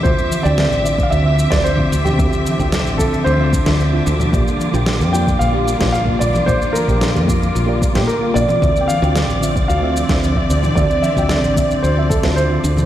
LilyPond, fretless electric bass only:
\new Staff \with { instrumentName = "Fretless electric bass" } { \clef bass \time 4/4 \key d \minor \tempo 4 = 112 d,16 r8 d,8 a,,8. d,8. d,8. d,16 r16 | d,16 r8 d,8 a,,8. d,8. d,8. d,16 r16 | bes,,16 r8 bes,,8 f,8. bes,,8. bes,,8. bes,,16 r16 | bes,,16 r8 bes,,8 f,8. bes,,8. bes,16 r8 bes,,16 r16 |
d,16 r8 d,8 a,,8. d,8. d,8. d,16 r16 | d,16 r8 d,8 a,,8. d,8. d,8. d,16 r16 | }